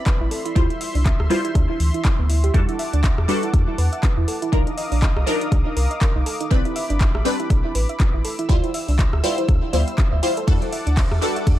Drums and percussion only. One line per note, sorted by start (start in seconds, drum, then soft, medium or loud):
0.06 kick loud
0.06 clap loud
0.06 closed hi-hat medium
0.31 open hi-hat loud
0.46 closed hi-hat medium
0.56 kick loud
0.56 closed hi-hat medium
0.70 closed hi-hat soft
0.81 open hi-hat loud
0.95 open hi-hat medium
1.06 kick loud
1.06 clap loud
1.06 closed hi-hat medium
1.20 cross-stick medium
1.30 open hi-hat loud
1.45 closed hi-hat medium
1.55 kick loud
1.55 cross-stick medium
1.55 closed hi-hat medium
1.80 open hi-hat loud
1.94 closed hi-hat soft
2.05 kick loud
2.05 clap loud
2.05 closed hi-hat medium
2.30 open hi-hat loud
2.44 closed hi-hat medium
2.54 kick loud
2.54 closed hi-hat medium
2.69 closed hi-hat soft
2.79 open hi-hat loud
2.93 closed hi-hat medium
3.04 kick loud
3.04 clap loud
3.04 closed hi-hat medium
3.18 cross-stick medium
3.29 open hi-hat loud
3.43 closed hi-hat medium
3.54 kick loud
3.54 cross-stick medium
3.54 closed hi-hat medium
3.78 open hi-hat loud
3.93 closed hi-hat soft
4.03 kick loud
4.03 clap loud
4.03 closed hi-hat medium
4.28 open hi-hat loud
4.42 closed hi-hat medium
4.53 kick loud
4.53 closed hi-hat medium
4.67 closed hi-hat soft
4.78 open hi-hat loud
4.92 open hi-hat medium
5.02 kick loud
5.02 clap loud
5.02 closed hi-hat medium
5.17 cross-stick medium
5.27 open hi-hat loud
5.41 closed hi-hat medium
5.52 kick loud
5.52 cross-stick medium
5.52 closed hi-hat medium
5.77 open hi-hat loud
5.91 closed hi-hat soft
6.01 kick loud
6.01 clap loud
6.01 closed hi-hat medium
6.26 open hi-hat loud
6.41 closed hi-hat medium
6.51 kick loud
6.51 closed hi-hat medium
6.65 closed hi-hat soft
6.76 open hi-hat loud
6.90 closed hi-hat medium
7.01 kick loud
7.01 clap loud
7.01 closed hi-hat medium
7.15 cross-stick medium
7.25 open hi-hat loud
7.40 closed hi-hat medium
7.50 kick loud
7.50 cross-stick medium
7.50 closed hi-hat medium
7.75 open hi-hat loud
7.89 closed hi-hat soft
8.00 kick loud
8.00 clap loud
8.00 closed hi-hat medium
8.25 open hi-hat loud
8.39 closed hi-hat medium
8.49 kick loud
8.49 closed hi-hat medium
8.64 closed hi-hat soft
8.74 open hi-hat loud
8.88 open hi-hat medium
8.99 kick loud
8.99 clap loud
8.99 closed hi-hat medium
9.13 cross-stick medium
9.24 open hi-hat loud
9.38 closed hi-hat soft
9.49 kick loud
9.49 cross-stick medium
9.49 closed hi-hat medium
9.73 open hi-hat loud
9.88 closed hi-hat soft
9.98 kick loud
9.98 clap loud
9.98 closed hi-hat medium
10.23 open hi-hat loud
10.37 closed hi-hat medium
10.48 kick loud
10.48 closed hi-hat medium
10.48 ride medium
10.62 closed hi-hat soft
10.73 open hi-hat loud
10.87 closed hi-hat medium
10.97 kick loud
10.97 clap loud
10.97 closed hi-hat medium
10.97 ride medium
11.12 cross-stick medium
11.22 open hi-hat loud
11.36 closed hi-hat soft
11.47 kick loud
11.47 cross-stick medium
11.47 closed hi-hat medium
11.47 ride medium